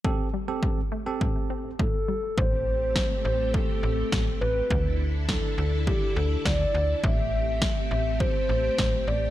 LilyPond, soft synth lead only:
\new Staff \with { instrumentName = "Soft synth lead" } { \time 4/4 \key a \minor \tempo 4 = 103 r2. a'4 | c''4. c''8 a'4. b'8~ | b'8 r8 a'4 g'8 a'8 d''4 | e''4. e''8 c''4. d''8 | }